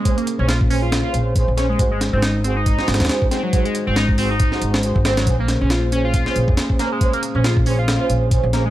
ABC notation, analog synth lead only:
X:1
M:4/4
L:1/16
Q:"Swing 16ths" 1/4=138
K:Bbm
V:1 name="Analog synth lead"
A, B, z D F z D F2 F z4 D A, | z A, z C E z C E2 E z4 C G,- | G, A, z C E z C E2 E z4 C G, | z B, z D F z D F2 F z4 B, A,- |
A, B, z D F z D F2 F z4 B, A, |]